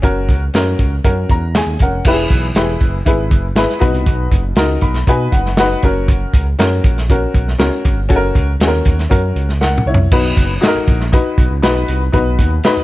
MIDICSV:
0, 0, Header, 1, 4, 480
1, 0, Start_track
1, 0, Key_signature, 5, "major"
1, 0, Tempo, 504202
1, 30, Time_signature, 4, 2, 24, 8
1, 12222, End_track
2, 0, Start_track
2, 0, Title_t, "Upright piano"
2, 0, Program_c, 0, 0
2, 21, Note_on_c, 0, 61, 89
2, 30, Note_on_c, 0, 66, 83
2, 38, Note_on_c, 0, 70, 101
2, 389, Note_off_c, 0, 61, 0
2, 394, Note_off_c, 0, 66, 0
2, 398, Note_off_c, 0, 70, 0
2, 512, Note_on_c, 0, 61, 80
2, 521, Note_on_c, 0, 66, 70
2, 529, Note_on_c, 0, 70, 93
2, 875, Note_off_c, 0, 61, 0
2, 880, Note_off_c, 0, 66, 0
2, 884, Note_off_c, 0, 70, 0
2, 994, Note_on_c, 0, 61, 71
2, 994, Note_on_c, 0, 70, 86
2, 997, Note_on_c, 0, 66, 63
2, 1243, Note_on_c, 0, 82, 57
2, 1357, Note_off_c, 0, 61, 0
2, 1357, Note_off_c, 0, 70, 0
2, 1358, Note_off_c, 0, 66, 0
2, 1461, Note_off_c, 0, 82, 0
2, 1480, Note_on_c, 0, 68, 65
2, 1482, Note_on_c, 0, 80, 75
2, 1700, Note_off_c, 0, 80, 0
2, 1704, Note_off_c, 0, 68, 0
2, 1732, Note_on_c, 0, 78, 61
2, 1737, Note_on_c, 0, 70, 62
2, 1742, Note_on_c, 0, 61, 57
2, 1946, Note_off_c, 0, 78, 0
2, 1964, Note_on_c, 0, 64, 92
2, 1965, Note_on_c, 0, 52, 62
2, 1970, Note_on_c, 0, 67, 72
2, 1976, Note_on_c, 0, 71, 106
2, 2019, Note_off_c, 0, 67, 0
2, 2025, Note_on_c, 0, 68, 89
2, 2182, Note_off_c, 0, 70, 0
2, 2184, Note_off_c, 0, 61, 0
2, 2322, Note_off_c, 0, 64, 0
2, 2328, Note_off_c, 0, 71, 0
2, 2353, Note_off_c, 0, 68, 0
2, 2439, Note_on_c, 0, 64, 76
2, 2441, Note_on_c, 0, 67, 61
2, 2444, Note_on_c, 0, 71, 82
2, 2494, Note_off_c, 0, 67, 0
2, 2495, Note_on_c, 0, 68, 76
2, 2641, Note_off_c, 0, 52, 0
2, 2800, Note_off_c, 0, 64, 0
2, 2803, Note_off_c, 0, 71, 0
2, 2828, Note_off_c, 0, 68, 0
2, 2908, Note_on_c, 0, 64, 72
2, 2924, Note_on_c, 0, 68, 67
2, 2925, Note_on_c, 0, 71, 79
2, 3275, Note_off_c, 0, 64, 0
2, 3283, Note_off_c, 0, 68, 0
2, 3283, Note_off_c, 0, 71, 0
2, 3385, Note_on_c, 0, 64, 85
2, 3396, Note_on_c, 0, 68, 76
2, 3405, Note_on_c, 0, 71, 97
2, 3609, Note_on_c, 0, 63, 84
2, 3614, Note_off_c, 0, 71, 0
2, 3618, Note_on_c, 0, 47, 68
2, 3618, Note_on_c, 0, 66, 76
2, 3628, Note_on_c, 0, 71, 86
2, 3629, Note_off_c, 0, 64, 0
2, 3635, Note_off_c, 0, 68, 0
2, 4198, Note_off_c, 0, 63, 0
2, 4202, Note_off_c, 0, 66, 0
2, 4207, Note_off_c, 0, 71, 0
2, 4308, Note_off_c, 0, 47, 0
2, 4346, Note_on_c, 0, 63, 86
2, 4351, Note_on_c, 0, 66, 70
2, 4355, Note_on_c, 0, 70, 91
2, 4591, Note_on_c, 0, 83, 65
2, 4714, Note_off_c, 0, 63, 0
2, 4717, Note_off_c, 0, 66, 0
2, 4719, Note_off_c, 0, 70, 0
2, 4816, Note_off_c, 0, 83, 0
2, 4831, Note_on_c, 0, 63, 76
2, 4839, Note_on_c, 0, 80, 69
2, 4841, Note_on_c, 0, 66, 68
2, 4846, Note_on_c, 0, 71, 92
2, 5060, Note_off_c, 0, 80, 0
2, 5064, Note_on_c, 0, 78, 64
2, 5196, Note_off_c, 0, 63, 0
2, 5202, Note_off_c, 0, 66, 0
2, 5204, Note_off_c, 0, 71, 0
2, 5292, Note_off_c, 0, 78, 0
2, 5318, Note_on_c, 0, 78, 81
2, 5320, Note_on_c, 0, 66, 86
2, 5322, Note_on_c, 0, 63, 87
2, 5331, Note_on_c, 0, 71, 103
2, 5541, Note_off_c, 0, 66, 0
2, 5550, Note_on_c, 0, 61, 89
2, 5555, Note_on_c, 0, 66, 82
2, 5558, Note_off_c, 0, 63, 0
2, 5563, Note_off_c, 0, 71, 0
2, 5564, Note_on_c, 0, 70, 97
2, 5763, Note_off_c, 0, 78, 0
2, 6129, Note_off_c, 0, 61, 0
2, 6131, Note_off_c, 0, 66, 0
2, 6136, Note_off_c, 0, 70, 0
2, 6270, Note_on_c, 0, 61, 87
2, 6270, Note_on_c, 0, 66, 79
2, 6276, Note_on_c, 0, 70, 89
2, 6636, Note_off_c, 0, 61, 0
2, 6636, Note_off_c, 0, 66, 0
2, 6640, Note_off_c, 0, 70, 0
2, 6757, Note_on_c, 0, 61, 79
2, 6758, Note_on_c, 0, 66, 78
2, 6768, Note_on_c, 0, 70, 85
2, 7120, Note_off_c, 0, 61, 0
2, 7120, Note_off_c, 0, 66, 0
2, 7126, Note_off_c, 0, 70, 0
2, 7220, Note_on_c, 0, 61, 89
2, 7225, Note_on_c, 0, 66, 82
2, 7229, Note_on_c, 0, 70, 92
2, 7592, Note_off_c, 0, 61, 0
2, 7594, Note_off_c, 0, 66, 0
2, 7596, Note_off_c, 0, 70, 0
2, 7699, Note_on_c, 0, 61, 104
2, 7706, Note_on_c, 0, 69, 86
2, 7708, Note_on_c, 0, 66, 89
2, 7767, Note_on_c, 0, 70, 109
2, 7768, Note_off_c, 0, 69, 0
2, 8071, Note_off_c, 0, 61, 0
2, 8075, Note_off_c, 0, 66, 0
2, 8105, Note_off_c, 0, 70, 0
2, 8198, Note_on_c, 0, 61, 85
2, 8199, Note_on_c, 0, 66, 75
2, 8205, Note_on_c, 0, 68, 71
2, 8257, Note_on_c, 0, 70, 96
2, 8258, Note_off_c, 0, 68, 0
2, 8560, Note_off_c, 0, 61, 0
2, 8561, Note_off_c, 0, 66, 0
2, 8590, Note_off_c, 0, 70, 0
2, 8658, Note_on_c, 0, 61, 79
2, 8662, Note_on_c, 0, 66, 70
2, 8671, Note_on_c, 0, 70, 88
2, 9030, Note_off_c, 0, 61, 0
2, 9032, Note_off_c, 0, 66, 0
2, 9036, Note_off_c, 0, 70, 0
2, 9148, Note_on_c, 0, 78, 72
2, 9150, Note_on_c, 0, 70, 61
2, 9379, Note_off_c, 0, 78, 0
2, 9380, Note_off_c, 0, 70, 0
2, 9397, Note_on_c, 0, 73, 72
2, 9402, Note_on_c, 0, 64, 57
2, 9634, Note_on_c, 0, 63, 82
2, 9638, Note_on_c, 0, 47, 73
2, 9641, Note_on_c, 0, 71, 95
2, 9642, Note_on_c, 0, 66, 74
2, 9851, Note_off_c, 0, 73, 0
2, 9854, Note_off_c, 0, 64, 0
2, 9997, Note_off_c, 0, 63, 0
2, 10001, Note_off_c, 0, 71, 0
2, 10002, Note_off_c, 0, 66, 0
2, 10100, Note_on_c, 0, 63, 88
2, 10100, Note_on_c, 0, 66, 83
2, 10107, Note_on_c, 0, 69, 70
2, 10163, Note_on_c, 0, 70, 96
2, 10168, Note_off_c, 0, 69, 0
2, 10317, Note_off_c, 0, 47, 0
2, 10470, Note_off_c, 0, 63, 0
2, 10470, Note_off_c, 0, 66, 0
2, 10502, Note_off_c, 0, 70, 0
2, 10588, Note_on_c, 0, 63, 81
2, 10601, Note_on_c, 0, 71, 82
2, 10602, Note_on_c, 0, 66, 76
2, 10954, Note_off_c, 0, 63, 0
2, 10960, Note_off_c, 0, 71, 0
2, 10961, Note_off_c, 0, 66, 0
2, 11066, Note_on_c, 0, 63, 94
2, 11073, Note_on_c, 0, 66, 83
2, 11075, Note_on_c, 0, 71, 107
2, 11432, Note_off_c, 0, 63, 0
2, 11436, Note_off_c, 0, 66, 0
2, 11437, Note_off_c, 0, 71, 0
2, 11542, Note_on_c, 0, 63, 77
2, 11548, Note_on_c, 0, 66, 75
2, 11550, Note_on_c, 0, 47, 68
2, 11555, Note_on_c, 0, 71, 92
2, 11910, Note_off_c, 0, 63, 0
2, 11913, Note_off_c, 0, 66, 0
2, 11916, Note_off_c, 0, 71, 0
2, 12038, Note_on_c, 0, 63, 88
2, 12041, Note_on_c, 0, 66, 82
2, 12047, Note_on_c, 0, 71, 105
2, 12222, Note_off_c, 0, 47, 0
2, 12222, Note_off_c, 0, 63, 0
2, 12222, Note_off_c, 0, 66, 0
2, 12222, Note_off_c, 0, 71, 0
2, 12222, End_track
3, 0, Start_track
3, 0, Title_t, "Analog synth bass"
3, 0, Program_c, 1, 38
3, 29, Note_on_c, 1, 30, 104
3, 270, Note_on_c, 1, 37, 101
3, 284, Note_off_c, 1, 30, 0
3, 471, Note_off_c, 1, 37, 0
3, 517, Note_on_c, 1, 42, 92
3, 715, Note_off_c, 1, 42, 0
3, 752, Note_on_c, 1, 37, 78
3, 952, Note_off_c, 1, 37, 0
3, 993, Note_on_c, 1, 42, 99
3, 1193, Note_off_c, 1, 42, 0
3, 1233, Note_on_c, 1, 40, 83
3, 1534, Note_off_c, 1, 40, 0
3, 1587, Note_on_c, 1, 39, 77
3, 1689, Note_off_c, 1, 39, 0
3, 1716, Note_on_c, 1, 29, 77
3, 1915, Note_off_c, 1, 29, 0
3, 1956, Note_on_c, 1, 28, 108
3, 2155, Note_off_c, 1, 28, 0
3, 2192, Note_on_c, 1, 35, 100
3, 2393, Note_off_c, 1, 35, 0
3, 2427, Note_on_c, 1, 28, 92
3, 2630, Note_off_c, 1, 28, 0
3, 2677, Note_on_c, 1, 30, 83
3, 2876, Note_off_c, 1, 30, 0
3, 2914, Note_on_c, 1, 32, 91
3, 3155, Note_on_c, 1, 30, 92
3, 3169, Note_off_c, 1, 32, 0
3, 3355, Note_off_c, 1, 30, 0
3, 3380, Note_on_c, 1, 32, 85
3, 3486, Note_off_c, 1, 32, 0
3, 3630, Note_on_c, 1, 35, 84
3, 3732, Note_off_c, 1, 35, 0
3, 3743, Note_on_c, 1, 36, 95
3, 3848, Note_off_c, 1, 36, 0
3, 3871, Note_on_c, 1, 35, 99
3, 4073, Note_off_c, 1, 35, 0
3, 4105, Note_on_c, 1, 30, 101
3, 4310, Note_off_c, 1, 30, 0
3, 4340, Note_on_c, 1, 37, 92
3, 4546, Note_off_c, 1, 37, 0
3, 4587, Note_on_c, 1, 35, 85
3, 4791, Note_off_c, 1, 35, 0
3, 4827, Note_on_c, 1, 47, 100
3, 5031, Note_off_c, 1, 47, 0
3, 5071, Note_on_c, 1, 30, 89
3, 5474, Note_off_c, 1, 30, 0
3, 5551, Note_on_c, 1, 30, 82
3, 5954, Note_off_c, 1, 30, 0
3, 6032, Note_on_c, 1, 37, 102
3, 6234, Note_off_c, 1, 37, 0
3, 6274, Note_on_c, 1, 42, 101
3, 6475, Note_off_c, 1, 42, 0
3, 6511, Note_on_c, 1, 34, 85
3, 6915, Note_off_c, 1, 34, 0
3, 6988, Note_on_c, 1, 35, 96
3, 7191, Note_off_c, 1, 35, 0
3, 7227, Note_on_c, 1, 37, 94
3, 7331, Note_off_c, 1, 37, 0
3, 7474, Note_on_c, 1, 32, 95
3, 7575, Note_off_c, 1, 32, 0
3, 7587, Note_on_c, 1, 31, 88
3, 7691, Note_off_c, 1, 31, 0
3, 7711, Note_on_c, 1, 30, 111
3, 7913, Note_off_c, 1, 30, 0
3, 7951, Note_on_c, 1, 37, 108
3, 8153, Note_off_c, 1, 37, 0
3, 8186, Note_on_c, 1, 39, 83
3, 8390, Note_off_c, 1, 39, 0
3, 8433, Note_on_c, 1, 39, 86
3, 8634, Note_off_c, 1, 39, 0
3, 8675, Note_on_c, 1, 42, 95
3, 8876, Note_off_c, 1, 42, 0
3, 8907, Note_on_c, 1, 37, 86
3, 9312, Note_off_c, 1, 37, 0
3, 9385, Note_on_c, 1, 36, 82
3, 9589, Note_off_c, 1, 36, 0
3, 9630, Note_on_c, 1, 35, 109
3, 9832, Note_off_c, 1, 35, 0
3, 9872, Note_on_c, 1, 30, 112
3, 10073, Note_off_c, 1, 30, 0
3, 10232, Note_on_c, 1, 34, 46
3, 10280, Note_off_c, 1, 34, 0
3, 10352, Note_on_c, 1, 34, 88
3, 10653, Note_off_c, 1, 34, 0
3, 10832, Note_on_c, 1, 35, 85
3, 10933, Note_off_c, 1, 35, 0
3, 10957, Note_on_c, 1, 37, 81
3, 11055, Note_off_c, 1, 37, 0
3, 11070, Note_on_c, 1, 35, 90
3, 11271, Note_off_c, 1, 35, 0
3, 11315, Note_on_c, 1, 36, 90
3, 11514, Note_off_c, 1, 36, 0
3, 11552, Note_on_c, 1, 35, 103
3, 11792, Note_on_c, 1, 39, 95
3, 11807, Note_off_c, 1, 35, 0
3, 11992, Note_off_c, 1, 39, 0
3, 12155, Note_on_c, 1, 39, 49
3, 12201, Note_off_c, 1, 39, 0
3, 12222, End_track
4, 0, Start_track
4, 0, Title_t, "Drums"
4, 32, Note_on_c, 9, 36, 107
4, 34, Note_on_c, 9, 42, 78
4, 127, Note_off_c, 9, 36, 0
4, 129, Note_off_c, 9, 42, 0
4, 273, Note_on_c, 9, 36, 83
4, 283, Note_on_c, 9, 42, 74
4, 369, Note_off_c, 9, 36, 0
4, 378, Note_off_c, 9, 42, 0
4, 512, Note_on_c, 9, 42, 71
4, 522, Note_on_c, 9, 38, 85
4, 607, Note_off_c, 9, 42, 0
4, 617, Note_off_c, 9, 38, 0
4, 750, Note_on_c, 9, 42, 65
4, 754, Note_on_c, 9, 36, 88
4, 845, Note_off_c, 9, 42, 0
4, 849, Note_off_c, 9, 36, 0
4, 995, Note_on_c, 9, 36, 93
4, 996, Note_on_c, 9, 42, 87
4, 1090, Note_off_c, 9, 36, 0
4, 1092, Note_off_c, 9, 42, 0
4, 1233, Note_on_c, 9, 36, 89
4, 1234, Note_on_c, 9, 42, 64
4, 1328, Note_off_c, 9, 36, 0
4, 1329, Note_off_c, 9, 42, 0
4, 1474, Note_on_c, 9, 38, 95
4, 1480, Note_on_c, 9, 42, 89
4, 1569, Note_off_c, 9, 38, 0
4, 1575, Note_off_c, 9, 42, 0
4, 1706, Note_on_c, 9, 42, 73
4, 1716, Note_on_c, 9, 36, 85
4, 1801, Note_off_c, 9, 42, 0
4, 1811, Note_off_c, 9, 36, 0
4, 1948, Note_on_c, 9, 49, 88
4, 1954, Note_on_c, 9, 36, 100
4, 2044, Note_off_c, 9, 49, 0
4, 2049, Note_off_c, 9, 36, 0
4, 2194, Note_on_c, 9, 36, 81
4, 2198, Note_on_c, 9, 42, 71
4, 2289, Note_off_c, 9, 36, 0
4, 2293, Note_off_c, 9, 42, 0
4, 2427, Note_on_c, 9, 42, 77
4, 2438, Note_on_c, 9, 38, 95
4, 2522, Note_off_c, 9, 42, 0
4, 2533, Note_off_c, 9, 38, 0
4, 2667, Note_on_c, 9, 42, 68
4, 2674, Note_on_c, 9, 36, 92
4, 2762, Note_off_c, 9, 42, 0
4, 2770, Note_off_c, 9, 36, 0
4, 2916, Note_on_c, 9, 36, 91
4, 2919, Note_on_c, 9, 42, 90
4, 3011, Note_off_c, 9, 36, 0
4, 3014, Note_off_c, 9, 42, 0
4, 3153, Note_on_c, 9, 36, 95
4, 3155, Note_on_c, 9, 42, 68
4, 3248, Note_off_c, 9, 36, 0
4, 3251, Note_off_c, 9, 42, 0
4, 3392, Note_on_c, 9, 38, 96
4, 3399, Note_on_c, 9, 42, 86
4, 3487, Note_off_c, 9, 38, 0
4, 3494, Note_off_c, 9, 42, 0
4, 3521, Note_on_c, 9, 38, 36
4, 3616, Note_off_c, 9, 38, 0
4, 3628, Note_on_c, 9, 42, 78
4, 3634, Note_on_c, 9, 36, 92
4, 3723, Note_off_c, 9, 42, 0
4, 3729, Note_off_c, 9, 36, 0
4, 3755, Note_on_c, 9, 42, 52
4, 3850, Note_off_c, 9, 42, 0
4, 3867, Note_on_c, 9, 42, 78
4, 3870, Note_on_c, 9, 36, 117
4, 3962, Note_off_c, 9, 42, 0
4, 3965, Note_off_c, 9, 36, 0
4, 4108, Note_on_c, 9, 36, 87
4, 4113, Note_on_c, 9, 42, 78
4, 4204, Note_off_c, 9, 36, 0
4, 4208, Note_off_c, 9, 42, 0
4, 4336, Note_on_c, 9, 42, 73
4, 4347, Note_on_c, 9, 38, 98
4, 4432, Note_off_c, 9, 42, 0
4, 4442, Note_off_c, 9, 38, 0
4, 4581, Note_on_c, 9, 42, 68
4, 4589, Note_on_c, 9, 36, 91
4, 4676, Note_off_c, 9, 42, 0
4, 4684, Note_off_c, 9, 36, 0
4, 4706, Note_on_c, 9, 38, 36
4, 4706, Note_on_c, 9, 42, 51
4, 4801, Note_off_c, 9, 38, 0
4, 4802, Note_off_c, 9, 42, 0
4, 4830, Note_on_c, 9, 36, 91
4, 4833, Note_on_c, 9, 42, 98
4, 4925, Note_off_c, 9, 36, 0
4, 4928, Note_off_c, 9, 42, 0
4, 5068, Note_on_c, 9, 42, 74
4, 5069, Note_on_c, 9, 36, 91
4, 5163, Note_off_c, 9, 42, 0
4, 5164, Note_off_c, 9, 36, 0
4, 5198, Note_on_c, 9, 38, 34
4, 5293, Note_off_c, 9, 38, 0
4, 5305, Note_on_c, 9, 38, 109
4, 5312, Note_on_c, 9, 42, 90
4, 5401, Note_off_c, 9, 38, 0
4, 5407, Note_off_c, 9, 42, 0
4, 5546, Note_on_c, 9, 42, 81
4, 5552, Note_on_c, 9, 36, 98
4, 5641, Note_off_c, 9, 42, 0
4, 5647, Note_off_c, 9, 36, 0
4, 5791, Note_on_c, 9, 36, 117
4, 5791, Note_on_c, 9, 42, 83
4, 5887, Note_off_c, 9, 36, 0
4, 5887, Note_off_c, 9, 42, 0
4, 6031, Note_on_c, 9, 36, 91
4, 6038, Note_on_c, 9, 42, 80
4, 6127, Note_off_c, 9, 36, 0
4, 6133, Note_off_c, 9, 42, 0
4, 6272, Note_on_c, 9, 42, 80
4, 6283, Note_on_c, 9, 38, 93
4, 6367, Note_off_c, 9, 42, 0
4, 6378, Note_off_c, 9, 38, 0
4, 6511, Note_on_c, 9, 42, 71
4, 6514, Note_on_c, 9, 36, 95
4, 6606, Note_off_c, 9, 42, 0
4, 6610, Note_off_c, 9, 36, 0
4, 6643, Note_on_c, 9, 38, 37
4, 6644, Note_on_c, 9, 42, 49
4, 6739, Note_off_c, 9, 38, 0
4, 6739, Note_off_c, 9, 42, 0
4, 6756, Note_on_c, 9, 36, 98
4, 6759, Note_on_c, 9, 42, 90
4, 6852, Note_off_c, 9, 36, 0
4, 6854, Note_off_c, 9, 42, 0
4, 6992, Note_on_c, 9, 36, 93
4, 6995, Note_on_c, 9, 42, 68
4, 7087, Note_off_c, 9, 36, 0
4, 7090, Note_off_c, 9, 42, 0
4, 7121, Note_on_c, 9, 38, 36
4, 7216, Note_off_c, 9, 38, 0
4, 7232, Note_on_c, 9, 38, 104
4, 7238, Note_on_c, 9, 42, 89
4, 7327, Note_off_c, 9, 38, 0
4, 7333, Note_off_c, 9, 42, 0
4, 7470, Note_on_c, 9, 42, 79
4, 7475, Note_on_c, 9, 36, 104
4, 7566, Note_off_c, 9, 42, 0
4, 7570, Note_off_c, 9, 36, 0
4, 7712, Note_on_c, 9, 36, 112
4, 7716, Note_on_c, 9, 42, 84
4, 7808, Note_off_c, 9, 36, 0
4, 7811, Note_off_c, 9, 42, 0
4, 7952, Note_on_c, 9, 36, 89
4, 7957, Note_on_c, 9, 42, 77
4, 8047, Note_off_c, 9, 36, 0
4, 8052, Note_off_c, 9, 42, 0
4, 8190, Note_on_c, 9, 42, 80
4, 8200, Note_on_c, 9, 38, 99
4, 8285, Note_off_c, 9, 42, 0
4, 8295, Note_off_c, 9, 38, 0
4, 8427, Note_on_c, 9, 42, 73
4, 8433, Note_on_c, 9, 36, 89
4, 8522, Note_off_c, 9, 42, 0
4, 8528, Note_off_c, 9, 36, 0
4, 8560, Note_on_c, 9, 38, 34
4, 8560, Note_on_c, 9, 42, 52
4, 8655, Note_off_c, 9, 38, 0
4, 8656, Note_off_c, 9, 42, 0
4, 8673, Note_on_c, 9, 36, 97
4, 8679, Note_on_c, 9, 42, 92
4, 8769, Note_off_c, 9, 36, 0
4, 8775, Note_off_c, 9, 42, 0
4, 8912, Note_on_c, 9, 42, 69
4, 9007, Note_off_c, 9, 42, 0
4, 9035, Note_on_c, 9, 38, 36
4, 9131, Note_off_c, 9, 38, 0
4, 9153, Note_on_c, 9, 38, 63
4, 9249, Note_off_c, 9, 38, 0
4, 9308, Note_on_c, 9, 45, 71
4, 9404, Note_off_c, 9, 45, 0
4, 9466, Note_on_c, 9, 43, 103
4, 9562, Note_off_c, 9, 43, 0
4, 9631, Note_on_c, 9, 49, 99
4, 9632, Note_on_c, 9, 36, 121
4, 9726, Note_off_c, 9, 49, 0
4, 9727, Note_off_c, 9, 36, 0
4, 9872, Note_on_c, 9, 36, 89
4, 9881, Note_on_c, 9, 42, 80
4, 9968, Note_off_c, 9, 36, 0
4, 9976, Note_off_c, 9, 42, 0
4, 10113, Note_on_c, 9, 42, 88
4, 10124, Note_on_c, 9, 38, 103
4, 10208, Note_off_c, 9, 42, 0
4, 10219, Note_off_c, 9, 38, 0
4, 10352, Note_on_c, 9, 42, 69
4, 10355, Note_on_c, 9, 36, 100
4, 10447, Note_off_c, 9, 42, 0
4, 10450, Note_off_c, 9, 36, 0
4, 10478, Note_on_c, 9, 38, 40
4, 10573, Note_off_c, 9, 38, 0
4, 10595, Note_on_c, 9, 36, 99
4, 10596, Note_on_c, 9, 42, 97
4, 10690, Note_off_c, 9, 36, 0
4, 10692, Note_off_c, 9, 42, 0
4, 10833, Note_on_c, 9, 36, 92
4, 10836, Note_on_c, 9, 42, 72
4, 10928, Note_off_c, 9, 36, 0
4, 10932, Note_off_c, 9, 42, 0
4, 11077, Note_on_c, 9, 38, 108
4, 11083, Note_on_c, 9, 42, 94
4, 11172, Note_off_c, 9, 38, 0
4, 11178, Note_off_c, 9, 42, 0
4, 11311, Note_on_c, 9, 42, 78
4, 11406, Note_off_c, 9, 42, 0
4, 11553, Note_on_c, 9, 36, 118
4, 11553, Note_on_c, 9, 42, 81
4, 11648, Note_off_c, 9, 36, 0
4, 11648, Note_off_c, 9, 42, 0
4, 11793, Note_on_c, 9, 36, 88
4, 11804, Note_on_c, 9, 42, 79
4, 11889, Note_off_c, 9, 36, 0
4, 11899, Note_off_c, 9, 42, 0
4, 12029, Note_on_c, 9, 42, 75
4, 12040, Note_on_c, 9, 38, 97
4, 12125, Note_off_c, 9, 42, 0
4, 12135, Note_off_c, 9, 38, 0
4, 12222, End_track
0, 0, End_of_file